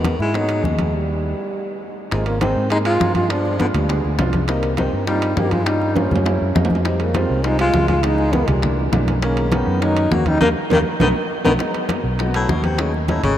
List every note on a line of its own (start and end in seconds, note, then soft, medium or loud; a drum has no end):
0.00 0.14 E2 medium
0.00 0.20 D#3 medium
0.00 0.15 G#3 medium
0.00 0.16 B3 medium
0.00 0.19 B3 medium
0.00 0.16 D#4 medium
0.00 0.16 F#4 medium
0.04 high bongo medium
0.04 high conga medium
0.04 high timbale medium
0.19 0.61 G#2 medium
0.19 0.37 G#3 medium
0.19 0.37 E4 medium
0.19 high bongo soft
0.19 high conga soft
0.34 0.66 F#3 medium
0.34 0.39 G#3 medium
0.34 0.39 B3 medium
0.34 0.39 D#4 medium
0.34 0.66 D#4 loud
0.34 0.40 F#4 medium
0.34 high bongo medium
0.34 high conga soft
0.34 high timbale medium
0.40 0.77 G#3 medium
0.40 0.77 B3 medium
0.40 0.77 D#4 medium
0.40 0.78 G#4 medium
0.49 high bongo soft
0.49 high conga soft
0.49 high timbale medium
0.64 1.32 D#2 medium
0.64 0.94 B2 medium
0.64 0.96 G#3 medium
0.64 high bongo soft
0.64 low bongo medium
0.64 high conga medium
0.79 high bongo soft
0.79 high conga medium
0.79 high timbale medium
0.95 1.83 G3 medium
2.11 2.53 G#1 medium
2.11 2.26 C3 medium
2.11 2.26 G#3 medium
2.11 2.32 A#3 medium
2.11 2.32 C4 medium
2.11 2.32 D#4 medium
2.11 2.33 F4 medium
2.11 high bongo medium
2.11 high conga soft
2.11 high timbale medium
2.26 2.40 C#3 medium
2.26 2.40 A#3 medium
2.26 high conga soft
2.26 high timbale medium
2.40 2.69 D#3 medium
2.40 2.61 A#3 medium
2.40 2.62 C4 medium
2.40 2.69 C4 medium
2.40 2.62 D#4 medium
2.40 2.62 G#4 medium
2.40 high bongo medium
2.40 high conga loud
2.40 high timbale loud
2.40 low timbale medium
2.56 2.97 G#2 medium
2.70 2.78 G#3 medium
2.70 2.91 A#3 medium
2.70 2.91 C4 medium
2.70 2.91 D#4 medium
2.70 2.78 D#4 loud
2.70 2.92 G#4 medium
2.70 high bongo medium
2.70 high conga soft
2.70 high timbale medium
2.85 3.13 G#3 medium
2.85 3.14 F4 loud
2.85 high conga soft
2.85 high timbale medium
3.00 3.69 G2 medium
3.00 3.21 A#3 medium
3.00 3.21 C4 medium
3.00 3.21 D#4 medium
3.00 3.21 F4 medium
3.00 high bongo medium
3.00 low bongo medium
3.00 high conga medium
3.00 low timbale medium
3.15 3.32 G#3 medium
3.15 3.32 F4 loud
3.15 high conga medium
3.15 high timbale medium
3.29 3.60 F3 medium
3.29 3.50 G#3 medium
3.29 3.50 B3 medium
3.29 3.51 D4 medium
3.29 3.59 D4 medium
3.29 3.51 F4 medium
3.29 high bongo medium
3.29 high conga soft
3.29 high timbale medium
3.46 high bongo soft
3.46 high conga soft
3.59 3.67 D3 medium
3.59 3.80 G#3 medium
3.59 3.80 B3 medium
3.59 3.66 B3 medium
3.59 3.80 D4 medium
3.59 3.81 F4 medium
3.59 high bongo medium
3.59 high conga loud
3.59 high timbale medium
3.59 low timbale medium
3.74 4.02 D2 medium
3.74 4.02 B2 medium
3.74 4.03 G3 medium
3.74 high bongo soft
3.74 high conga soft
3.74 low conga medium
3.74 high timbale medium
3.88 4.10 G#3 medium
3.88 4.10 B3 medium
3.88 4.10 D4 medium
3.88 4.10 G#4 medium
3.88 high bongo medium
3.88 high timbale medium
4.04 4.18 D2 medium
4.04 high conga soft
4.19 4.88 C2 medium
4.19 4.39 G#3 medium
4.19 4.40 B3 medium
4.19 4.40 D4 medium
4.19 4.40 F4 medium
4.19 high bongo medium
4.19 low bongo medium
4.19 high conga medium
4.19 high timbale medium
4.19 low timbale medium
4.33 high bongo soft
4.33 high conga medium
4.33 high timbale medium
4.48 4.76 D#3 medium
4.48 4.69 G3 medium
4.48 4.69 A#3 medium
4.48 4.76 A#3 medium
4.48 4.69 C4 medium
4.48 4.69 D#4 medium
4.48 high bongo medium
4.48 high conga soft
4.48 high timbale medium
4.63 high conga soft
4.63 high timbale medium
4.77 5.05 D#3 medium
4.77 4.98 G3 medium
4.77 4.98 A#3 medium
4.77 5.06 C4 medium
4.77 4.99 C4 medium
4.77 4.99 D#4 medium
4.77 high bongo medium
4.77 high conga loud
4.77 high timbale medium
4.77 low timbale medium
4.93 5.34 G2 medium
5.07 5.28 G3 medium
5.07 5.39 G3 medium
5.07 5.28 A#3 medium
5.07 5.29 C4 medium
5.07 5.38 D#4 medium
5.07 5.29 F4 medium
5.07 high bongo medium
5.07 high conga soft
5.07 high timbale medium
5.22 high conga soft
5.22 high timbale loud
5.36 6.06 G2 loud
5.36 5.58 G3 medium
5.36 5.58 A#3 medium
5.36 5.53 A#3 medium
5.36 5.58 C4 medium
5.36 5.58 D#4 medium
5.36 5.53 G4 medium
5.36 high bongo medium
5.36 low bongo medium
5.36 high conga medium
5.36 low timbale medium
5.51 5.68 G#3 medium
5.51 5.68 F4 loud
5.51 high conga medium
5.51 high timbale medium
5.65 5.87 G3 medium
5.65 5.98 G3 medium
5.65 5.87 A#3 medium
5.65 5.88 C#4 medium
5.65 5.98 D#4 loud
5.65 5.88 F4 medium
5.65 high bongo medium
5.65 high conga soft
5.65 high timbale medium
5.82 high bongo soft
5.82 high conga soft
5.95 6.26 F3 medium
5.95 6.17 G3 medium
5.95 6.17 A#3 medium
5.95 6.56 C#4 medium
5.95 6.17 C#4 medium
5.95 6.17 F4 medium
5.95 high bongo medium
5.95 high conga loud
5.95 high timbale medium
6.11 6.39 F#2 medium
6.11 high bongo soft
6.11 high conga soft
6.11 low conga medium
6.16 low timbale medium
6.25 6.46 G#3 medium
6.25 6.47 A#3 medium
6.25 6.47 C#4 medium
6.25 6.47 E4 medium
6.25 high bongo medium
6.25 high conga soft
6.25 low timbale medium
6.41 6.55 F#2 medium
6.41 high conga soft
6.54 7.24 F2 loud
6.54 6.76 G#3 medium
6.54 6.76 A#3 medium
6.54 6.76 C#4 medium
6.54 6.76 D#4 medium
6.54 high bongo medium
6.54 low bongo medium
6.54 high conga medium
6.54 low timbale medium
6.65 low timbale medium
6.70 high bongo soft
6.70 high conga medium
6.75 low timbale medium
6.84 7.04 C3 medium
6.84 7.06 G3 medium
6.84 7.06 G#3 medium
6.84 7.02 G#3 medium
6.84 7.06 C4 medium
6.84 7.06 D#4 medium
6.84 high bongo medium
6.84 high conga soft
6.84 high timbale medium
7.00 7.19 C#3 medium
7.00 7.18 A#3 medium
7.00 high conga soft
7.00 high timbale medium
7.14 7.48 D#3 medium
7.14 7.35 G3 medium
7.14 7.36 G#3 medium
7.14 7.36 C4 medium
7.14 7.47 C4 medium
7.14 7.36 F4 medium
7.14 high bongo medium
7.14 high conga loud
7.14 high timbale loud
7.14 low timbale medium
7.30 7.71 C2 medium
7.44 7.65 G3 medium
7.44 7.65 G#3 medium
7.44 7.60 G#3 medium
7.44 7.65 C4 medium
7.44 7.60 D#4 loud
7.44 7.66 F4 medium
7.44 high bongo medium
7.44 high conga soft
7.44 high timbale medium
7.59 7.88 G#3 medium
7.59 7.88 F4 loud
7.59 high conga soft
7.59 high timbale medium
7.73 8.43 C#2 loud
7.73 7.94 G3 medium
7.73 7.95 G#3 medium
7.73 7.95 C4 medium
7.73 7.95 F4 medium
7.73 high bongo medium
7.73 low bongo medium
7.73 high conga medium
7.73 low timbale medium
7.88 8.04 G#3 medium
7.88 8.06 F4 loud
7.88 high conga medium
7.88 high timbale medium
8.03 8.24 E3 medium
8.03 8.24 G#3 medium
8.03 8.34 G#3 medium
8.03 8.24 B3 medium
8.03 8.25 D#4 medium
8.03 8.35 D#4 loud
8.03 high bongo medium
8.03 high conga soft
8.03 high timbale medium
8.18 high bongo soft
8.18 high conga soft
8.33 8.50 D#3 medium
8.33 8.54 E3 medium
8.33 8.54 G#3 medium
8.33 8.54 B3 medium
8.33 8.49 B3 medium
8.33 8.55 D#4 medium
8.33 high bongo medium
8.33 high conga loud
8.33 high timbale medium
8.33 low timbale medium
8.48 8.90 C2 medium
8.48 8.78 A#2 medium
8.48 8.78 G3 medium
8.48 high bongo soft
8.48 high conga soft
8.48 low conga medium
8.48 high timbale medium
8.62 8.83 E3 medium
8.62 8.84 A3 medium
8.62 8.84 A#3 medium
8.62 8.84 D4 medium
8.62 high bongo medium
8.62 high conga soft
8.62 low conga medium
8.62 high timbale medium
8.78 high conga soft
8.92 9.61 B1 loud
8.92 9.13 E3 medium
8.92 9.13 A3 medium
8.92 9.13 A#3 medium
8.92 9.14 D4 medium
8.92 high bongo medium
8.92 low bongo medium
8.92 high conga medium
8.92 high timbale medium
8.92 low timbale medium
9.08 high bongo soft
9.08 high conga medium
9.08 high timbale medium
9.22 9.55 C#3 medium
9.22 9.43 D#3 medium
9.22 9.43 G#3 medium
9.22 9.43 A#3 medium
9.22 9.54 A#3 medium
9.22 9.44 C#4 medium
9.22 high bongo medium
9.22 high conga soft
9.22 high timbale medium
9.37 high conga soft
9.37 high timbale medium
9.52 9.73 D#3 medium
9.52 9.84 D#3 medium
9.52 9.73 G#3 medium
9.52 9.74 A#3 medium
9.52 9.85 B3 medium
9.52 9.74 C#4 medium
9.52 high bongo medium
9.52 high conga loud
9.52 high timbale medium
9.52 low timbale medium
9.67 10.08 F#2 medium
9.81 10.02 D#3 medium
9.81 10.12 F#3 medium
9.81 10.02 G#3 medium
9.81 10.03 A#3 medium
9.81 10.03 C#4 medium
9.81 10.12 D#4 loud
9.81 high bongo medium
9.81 high conga soft
9.81 high timbale medium
9.97 high conga soft
9.97 high timbale loud
10.11 10.39 D#2 loud
10.11 10.32 D#3 medium
10.11 10.33 G#3 medium
10.11 10.29 A#3 medium
10.11 10.33 A#3 medium
10.11 10.33 C#4 medium
10.11 10.30 F#4 loud
10.11 high bongo medium
10.11 low bongo medium
10.11 high conga medium
10.11 low timbale medium
10.26 10.40 G3 medium
10.26 10.42 D#4 loud
10.26 high conga medium
10.26 high timbale medium
10.40 10.52 D#2 loud
10.40 10.48 D#3 medium
10.40 10.51 D#3 medium
10.40 10.51 G3 medium
10.40 10.49 A#3 loud
10.40 10.51 A#3 medium
10.40 low bongo loud
10.40 high conga loud
10.40 high timbale loud
10.70 10.82 D#2 medium
10.70 10.80 D#3 loud
10.70 10.79 D#3 loud
10.70 10.80 G3 medium
10.70 10.80 A#3 medium
10.70 10.79 A#3 loud
10.70 low bongo medium
10.70 high conga loud
10.70 high timbale loud
11.00 11.12 B1 medium
11.00 11.08 D#3 medium
11.00 11.10 F#3 medium
11.00 11.10 A3 loud
11.00 11.10 B3 loud
11.00 11.08 B3 loud
11.00 low bongo loud
11.00 high conga loud
11.00 high timbale loud
11.44 11.56 B1 medium
11.44 11.52 D#3 medium
11.44 11.54 F#3 loud
11.44 11.54 A3 medium
11.44 11.54 B3 loud
11.44 11.52 B3 medium
11.44 low bongo medium
11.44 high conga medium
11.44 high timbale loud
11.59 12.01 F#3 medium
11.59 12.02 G#3 medium
11.59 12.02 B3 medium
11.59 12.02 D#4 medium
11.59 high bongo medium
11.59 high conga soft
11.59 high timbale medium
11.74 high conga soft
11.74 high timbale medium
11.89 high bongo medium
11.89 high conga loud
11.89 high timbale medium
11.89 low timbale medium
12.04 12.46 B1 medium
12.19 12.25 F#3 medium
12.19 12.25 G#3 medium
12.19 12.25 B3 medium
12.19 12.25 D#4 medium
12.19 high bongo medium
12.19 high conga soft
12.19 high timbale medium
12.26 12.63 F#3 medium
12.26 12.63 G#3 medium
12.26 12.63 B3 medium
12.26 12.64 F#4 medium
12.34 12.51 A2 medium
12.34 high conga soft
12.34 high timbale medium
12.49 13.18 D#2 loud
12.49 12.65 B2 medium
12.49 high bongo medium
12.49 low bongo medium
12.49 high conga medium
12.49 low timbale medium
12.64 12.81 C3 medium
12.64 high conga medium
12.64 high timbale medium
12.78 12.94 C#3 medium
12.78 13.00 F#3 medium
12.78 13.00 A3 medium
12.78 13.00 C#4 medium
12.78 13.00 D#4 medium
12.78 high bongo medium
12.78 high conga soft
12.78 high timbale medium
12.94 13.11 F#2 soft
12.94 high bongo soft
12.94 high conga soft
13.08 13.23 A2 medium
13.08 13.29 F#3 medium
13.08 13.29 A3 medium
13.08 13.30 C#4 medium
13.08 13.30 D#4 medium
13.08 high bongo medium
13.08 high conga loud
13.08 high timbale medium
13.08 low timbale medium
13.23 13.38 G#1 medium
13.23 13.38 C#3 loud
13.23 high bongo soft
13.23 high conga soft
13.23 low conga medium
13.23 high timbale medium